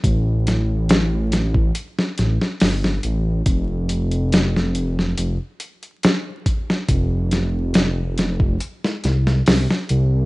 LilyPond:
<<
  \new Staff \with { instrumentName = "Detuned saw bass" } { \clef bass \time 4/4 \key f \dorian \tempo 4 = 70 a,,2 r8 a,,8 g,,8 a,,8 | f,,2 f,,8 r4. | f,,2 r8 c,8 c,8 c,8 | }
  \new DrumStaff \with { instrumentName = "Drums" } \drummode { \time 4/4 <hh bd>8 <hh sn>8 <hh sn>8 <hh sn>16 bd16 hh16 sn16 <hh sn>16 sn16 <hho sn>16 sn16 hh8 | <hh bd>8 hh16 hh16 <hh sn>16 sn16 hh16 sn16 hh8 hh16 hh16 <hh sn>8 <hh bd>16 sn16 | <hh bd>8 <hh sn>8 <hh sn>8 <hh sn>16 bd16 hh16 sn16 <hh sn>16 sn16 <hho sn>16 sn16 hh8 | }
>>